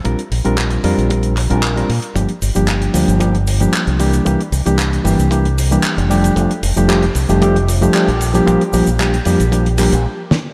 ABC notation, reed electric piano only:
X:1
M:4/4
L:1/16
Q:1/4=114
K:Bblyd
V:1 name="Reed electric piano"
[G,CDFB] z2 [G,CDFB]3 [G,CDFB]2 [G,CDFB]2 z [G,CDFB]2 [G,CDFB] z2 | [F,G,B,DG] z2 [F,G,B,DG]3 [F,G,B,DG]2 [F,G,B,DG] z2 [F,G,B,DG]3 [E,G,B,DG]2 | [E,G,B,DG] z2 [E,G,B,DG]3 [E,G,B,DG]2 [E,G,B,DG] z2 [E,G,B,DG]3 [F,G,A,DG]2 | [F,G,A,DG] z2 [F,G,A,DG] [F,G,A,DG] z2 [F,G,A,DG] [F,G,A,DG] z2 [F,G,A,DG] [F,G,A,DG] z2 [F,G,B,DG] |
[F,G,B,DG] z [F,G,B,DG] z [F,G,B,DG] z [F,G,B,DG] z [F,G,B,DG] z [F,G,B,DG] z4 z |]